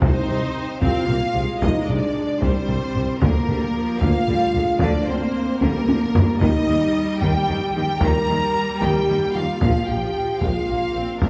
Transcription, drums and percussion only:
0.02 taiko
0.29 taiko low-mid
0.82 taiko
1.09 taiko low-mid
1.35 taiko low-mid
1.62 taiko
1.89 taiko low-mid
2.42 taiko
2.68 taiko low-mid
2.95 taiko low-mid
3.22 taiko
3.48 taiko low-mid
4.01 taiko
4.28 taiko low-mid
4.54 taiko low-mid
4.80 taiko
5.61 taiko high
5.89 taiko high
6.15 taiko low
6.41 taiko
7.21 taiko
8.01 taiko
8.81 taiko
9.61 taiko
10.41 taiko
11.22 taiko

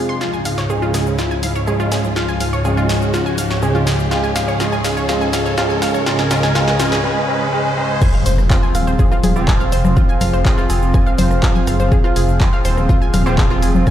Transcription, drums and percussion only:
0.21 snare, shaker
0.33 shaker
0.45 open hi-hat, shaker
0.58 snare, shaker
0.70 shaker
0.82 shaker
0.94 snare, open hi-hat, shaker
1.07 shaker
1.19 snare, shaker
1.31 shaker
1.43 open hi-hat, low conga, shaker
1.55 shaker
1.67 shaker
1.80 shaker
1.92 snare, open hi-hat, shaker
2.04 low conga, shaker
2.16 snare, shaker
2.29 shaker
2.40 open hi-hat, low conga, shaker
2.53 shaker
2.65 shaker
2.77 shaker
2.89 snare, open hi-hat, shaker
3.02 shaker
3.14 snare, shaker
3.26 shaker
3.38 open hi-hat, low conga, shaker
3.50 snare, shaker
3.62 shaker
3.75 low conga, shaker
3.87 snare, open hi-hat, shaker
3.99 shaker
4.11 snare, shaker
4.24 shaker
4.36 snare, open hi-hat, shaker
4.48 shaker
4.60 snare, shaker
4.72 shaker
4.84 snare, open hi-hat, shaker
4.97 shaker
5.09 snare, shaker
5.21 shaker
5.33 snare, open hi-hat, low conga, shaker
5.46 shaker
5.58 snare, shaker
5.70 shaker
5.82 snare, open hi-hat, shaker
5.94 low conga, shaker
6.06 snare, shaker
6.19 snare, shaker
6.31 snare, open hi-hat, low conga, shaker
6.43 snare, shaker
6.55 snare, shaker
6.68 snare, shaker
6.80 snare, open hi-hat, shaker
6.92 snare, shaker
8.02 kick, cross-stick, crash, shaker
8.14 shaker
8.26 open hi-hat, shaker
8.38 cross-stick, shaker
8.50 kick, clap, shaker
8.63 shaker
8.75 cross-stick, open hi-hat, shaker
8.87 shaker
8.99 kick, shaker
9.12 cross-stick, shaker
9.24 open hi-hat, low conga, shaker
9.36 shaker
9.48 kick, cross-stick, clap, shaker
9.60 shaker
9.72 open hi-hat, shaker
9.85 cross-stick, low conga, shaker
9.97 kick, shaker
10.09 shaker
10.21 cross-stick, open hi-hat, low conga, shaker
10.33 shaker
10.45 kick, clap, shaker
10.58 cross-stick, shaker
10.70 open hi-hat, shaker
10.82 shaker
10.94 kick, cross-stick, shaker
11.07 shaker
11.18 open hi-hat, low conga, shaker
11.31 cross-stick, shaker
11.43 kick, clap, shaker
11.55 low conga, shaker
11.67 cross-stick, open hi-hat, shaker
11.80 shaker
11.92 kick, shaker
12.04 cross-stick, shaker
12.16 open hi-hat, shaker
12.29 shaker
12.40 kick, cross-stick, clap, shaker
12.53 shaker
12.65 open hi-hat, shaker
12.77 cross-stick, shaker
12.89 kick, shaker
13.02 shaker
13.14 cross-stick, open hi-hat, low conga, shaker
13.26 shaker
13.38 kick, clap, shaker
13.51 cross-stick, shaker
13.62 open hi-hat, shaker
13.75 low conga, shaker
13.87 kick, cross-stick, shaker

